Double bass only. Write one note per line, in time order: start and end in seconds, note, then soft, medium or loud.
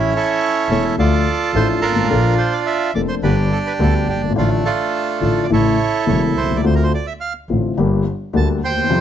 0.69 0.94 E1 soft
0.97 1.22 D2 medium
1.54 1.78 A1 medium
1.84 2.10 G#1 soft
2.10 2.35 A#1 medium
2.95 3.19 F1 soft
3.22 3.47 G1 medium
3.80 4.04 D2 medium
4.09 4.36 G1 soft
4.37 4.61 A1 medium
5.21 5.46 A1 soft
5.51 5.74 A1 medium
6.08 6.32 E1 medium
6.36 6.64 C2 soft
6.65 6.88 D2 medium
7.49 7.73 A1 soft
7.78 8.02 G1 medium
8.34 8.58 D2 medium
8.64 8.89 D#2 soft
8.90 9.01 F2 medium